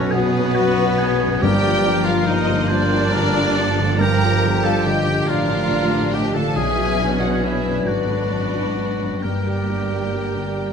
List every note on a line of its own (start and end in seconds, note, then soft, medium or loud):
0.00 1.38 B1 medium
0.00 1.41 B1 medium
0.00 0.27 F#2 medium
0.00 1.38 B2 medium
0.00 1.45 B2 medium
0.00 1.20 F#3 medium
0.00 1.24 F#3 medium
0.00 1.38 F#3 medium
0.00 0.38 B3 medium
0.00 0.98 B3 soft
0.00 1.38 B3 medium
0.00 0.13 C#4 medium
0.00 0.14 C#4 medium
0.00 0.12 F#4 medium
0.00 0.17 F#4 medium
0.00 1.45 F#4 medium
0.00 0.13 A4 medium
0.00 0.76 B4 medium
0.00 1.24 B4 medium
0.00 0.13 C#5 medium
0.00 0.11 F#5 medium
0.00 0.32 B5 medium
0.11 1.43 B3 medium
0.11 1.42 F#4 medium
0.11 0.56 G#4 medium
0.11 1.42 B4 loud
0.11 0.55 F#5 medium
0.17 0.49 F#4 medium
0.33 1.45 B5 medium
0.38 0.71 B3 medium
0.55 1.00 F#4 medium
0.55 1.45 F#5 medium
0.60 0.92 F#2 medium
0.77 1.45 B4 medium
0.82 1.14 F#4 medium
0.98 1.46 B3 medium
0.98 1.35 B3 medium
0.98 1.42 G#4 medium
1.22 1.44 F#2 medium
1.22 1.46 F#3 soft
1.41 5.24 G1 medium
1.41 2.65 G2 medium
1.41 3.99 G2 medium
1.41 5.24 G2 medium
1.41 3.96 G2 medium
1.41 6.51 F3 medium
1.41 5.24 F3 medium
1.41 3.95 A#3 medium
1.41 6.51 G4 medium
1.41 2.06 G4 loud
1.41 2.06 G4 medium
1.41 2.70 A#4 medium
1.41 2.05 D5 medium
1.41 2.05 G5 loud
1.63 5.53 F3 medium
1.63 1.99 F4 medium
1.86 2.19 D4 medium
2.04 2.28 F4 medium
2.04 2.27 F4 medium
2.04 4.63 F4 medium
2.04 2.27 F4 medium
2.04 2.27 D5 medium
2.04 2.27 F5 medium
2.27 2.68 D#4 medium
2.27 2.69 D#4 medium
2.27 2.61 F4 medium
2.27 6.18 G4 medium
2.27 2.70 C5 medium
2.27 2.70 D#5 loud
2.48 2.82 D3 soft
2.68 3.96 D4 medium
2.68 4.00 D4 loud
2.68 3.04 F4 medium
2.68 3.75 A#4 medium
2.68 3.14 C5 medium
2.68 4.00 D5 loud
2.68 3.12 F5 medium
2.91 3.27 D4 medium
2.91 6.60 G5 medium
3.13 3.49 D3 medium
3.13 3.57 A#4 medium
3.13 5.28 F5 medium
3.36 3.70 F4 medium
3.56 3.92 D4 medium
3.56 4.02 A4 medium
3.79 4.42 D3 medium
3.79 4.13 D3 medium
3.99 6.59 G2 medium
3.99 5.24 G2 medium
3.99 5.26 D3 medium
3.99 5.29 G4 medium
3.99 4.65 A#4 loud
3.99 4.63 A#4 medium
3.99 4.63 G5 medium
3.99 4.62 A#5 loud
4.21 4.55 F4 medium
4.43 6.34 D3 medium
4.43 4.78 D4 medium
4.64 6.60 F4 medium
4.64 4.99 F4 soft
4.64 4.88 A4 medium
4.64 4.86 A4 medium
4.64 4.86 F5 medium
4.64 4.85 A5 medium
4.86 5.04 D3 soft
4.86 5.28 G4 medium
4.86 5.31 G4 medium
4.86 5.91 A#4 medium
4.86 5.29 D#5 medium
4.86 5.28 G5 loud
5.06 5.27 D3 soft
5.27 6.54 A1 medium
5.27 6.54 A2 medium
5.27 6.55 F3 medium
5.27 6.54 D4 medium
5.27 6.13 F4 medium
5.27 5.62 F4 soft
5.27 6.15 F4 medium
5.27 6.27 A#4 medium
5.27 6.13 D5 medium
5.27 6.13 F5 medium
5.27 5.70 F5 medium
5.50 5.83 D4 medium
5.50 6.60 A#5 medium
5.71 6.05 D3 soft
5.71 6.60 F5 medium
5.91 6.26 F4 soft
5.91 6.59 A#4 soft
6.13 6.47 D4 medium
6.13 6.35 G4 medium
6.13 6.35 D#5 medium
6.13 6.35 G5 medium
6.34 6.56 D3 soft
6.34 6.60 D3 soft
6.34 6.55 A4 medium
6.34 6.56 A4 medium
6.34 6.56 F5 medium
6.34 6.56 A5 medium
6.56 7.81 B1 medium
6.56 7.86 B1 medium
6.56 7.85 B2 medium
6.56 9.27 B2 medium
6.56 7.84 E3 medium
6.56 9.07 F#3 medium
6.56 7.86 C#4 medium
6.56 7.03 G#4 medium
6.56 7.89 G#4 medium
6.56 7.21 G#4 medium
6.56 9.07 B4 medium
6.56 7.21 E5 medium
6.56 7.20 G#5 loud
6.78 8.99 F#3 soft
6.78 7.12 F#4 soft
7.00 7.33 D4 soft
7.20 7.44 F#4 medium
7.20 7.54 F#4 soft
7.20 7.42 F#4 medium
7.20 9.27 F#4 soft
7.20 7.42 D5 medium
7.20 7.42 F#5 medium
7.42 7.77 D4 soft
7.42 7.89 E4 medium
7.42 7.85 E4 medium
7.42 8.52 B4 soft
7.42 7.86 C#5 medium
7.42 7.86 E5 medium
7.64 7.85 F#2 soft
7.64 10.73 D5 soft
7.85 9.23 G#1 soft
7.85 9.23 G#2 soft
7.85 8.31 D3 medium
7.85 9.20 B3 medium
7.85 9.23 D4 medium
7.85 8.93 D4 medium
7.85 8.21 F#4 soft
7.85 9.24 F#4 medium
7.85 9.24 B4 medium
7.85 9.21 D5 medium
7.85 8.29 F#5 soft
8.07 8.43 D4 soft
8.07 9.27 B5 soft
8.31 8.67 F#2 soft
8.31 8.76 E3 medium
8.31 9.26 F#5 soft
8.53 8.91 F#4 soft
8.53 9.26 B4 soft
8.77 9.23 F#3 soft
8.77 9.14 D4 soft
9.00 9.23 F#2 soft
9.00 9.26 F#3 soft
9.22 10.73 G1 soft
9.22 10.73 G2 soft
9.22 10.73 G3 soft
9.22 10.73 A#3 soft
9.22 10.73 G4 medium
9.22 10.73 A#4 soft
9.22 10.73 D5 medium
9.22 10.73 G5 medium
9.45 10.73 D3 soft
9.45 9.82 G4 soft
9.68 10.73 A#3 soft
9.68 10.04 D4 soft
9.90 10.26 G4 soft
9.90 10.73 G4 soft
10.13 10.48 D4 soft
10.13 10.73 A#4 soft
10.35 10.70 D3 soft
10.35 10.73 D6 soft
10.57 10.73 G4 soft
10.57 10.73 G5 soft